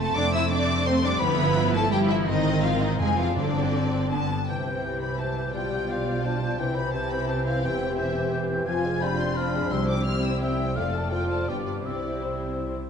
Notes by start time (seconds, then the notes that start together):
Already playing: F1 F2 C3 F3 A3 C4 F4 A4
0.00 A3 C4 A5
0.15 F1 F2 A3 C4 D4 D5 D6
0.34 C3 E4 E5 E6
0.50 A3 C4 D4 D5 D6
0.69 C4
0.86 A3 C4 A4 C5 C6
1.03 G3 C4 D4 D5 D6
1.21 G1 G2 F3 B3 E4 B4 B5
1.39 D3
1.57 A3
1.74 A3 E4 A4 A5
1.92 F3 G3 E4 G4 A4 G5
2.09 E3 E4 E5
2.26 G#1 G#2 D#3 C4 D#4 D#5
2.46 D#3
2.63 F3 C4 F4 F5
2.81 D#3 D#4 D#5
2.99 F1 F2 F3 G#3 C4 G#4 G#5
3.17 E3 F3 F4 G#4 F5
3.36 G1 G2 D3 C4 D4 D5
3.55 D3
3.75 C4
3.93 D4
4.12 G2 D3 B3 A5
4.31 D4 G4
4.48 C2 C3 E3 G3 E4 G4 C5 G5 G6
4.66 E3 G4 C5 G6
4.84 E3 E4 G4 C5 G6
5.01 E3 G4 C5 B5 G6
5.19 E3 E4 C5 A5 G6
5.37 E3 C4 C5 G6
5.54 B1 B2 F3 F4 G4 D5 G5 G6
5.72 F3 G4 D5 G6
5.89 F3 F4 D5 F5 G6
6.07 F3 G4 D5 G6
6.24 F3 D4 F4 D5 A5 G6
6.42 F3 D4 D5 G6
6.59 C2 C3 E3 C4 E4 G4 C5 G5 G6
6.76 E3 G4 C5 B5 G6
6.93 E3 E4 G4 C5 A5 G6
7.11 E3 G4 C5 B5 G6
7.28 E3 E4 C5 A5 G6
7.46 E3 C4 C5 F5 G6
7.63 E1 E2 E3 G4 C5 G5 G6
7.80 E3 C5 G6
7.97 E3 G4 C5 E5 G6
8.15 E3 C5 G6
8.32 E3 G4 C5 G6
8.49 E3 C4 C5 G6
8.67 F1 F2 F3 C4 F4 C5 F5 G#5 G#6
8.84 G#3 C5
9.01 G3 D4 F4 D5 B5 G6
9.19 C5 C6
9.36 F3 F4 B5 F6
9.54 G#3 C4
9.71 C2 C3 G3 E4 G4 C5 C6 E6
9.89 C5 D6
10.06 C4 E4 C5 F6
10.24 C5 E6
10.41 E4 E5 G5 E6
10.59 E5
10.76 F1 F2 A3 F4 A4 D5 F5 F6
10.94 A4 A5
11.12 F3 F4 C5 G5 F6
11.30 A4 A5
11.48 G1 G2 G3 B3 D4 G4 B4 G5 D6
11.66 F4 B4 D5
11.84 C2 C3 G3 C4 E4 C5 D5 E6
12.04 C5
12.22 E4 C5
12.41 C5
12.60 E4
12.78 C4